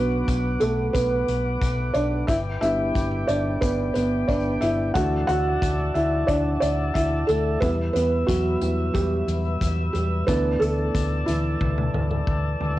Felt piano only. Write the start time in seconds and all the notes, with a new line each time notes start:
Already playing: F#3 B3 D4 F#4 B4
0.60 A3 A4
0.93 B3 B4
1.94 D4 D5
2.27 E4 E5
2.61 G3 B3 D4 E4 E5
3.27 D4 D5
3.61 B3 B4
3.94 B3 B4
4.28 D4 D5
4.61 E4 E5
4.94 E3 A3 D4 F#4 F#5
5.27 F#4 F#5
5.94 E4 E5
6.27 D4 D5
6.60 D4 D5
6.94 E4 E5
7.27 A3 A4
7.60 E3 G3 B3 B4
7.93 B3 B4
8.27 F#3 F#4
8.61 E3 G3 B3
8.94 G3 G4
9.93 G3 G4
10.27 E3 A3 B3 D4 B4
10.60 A3 A4
11.26 E3 E4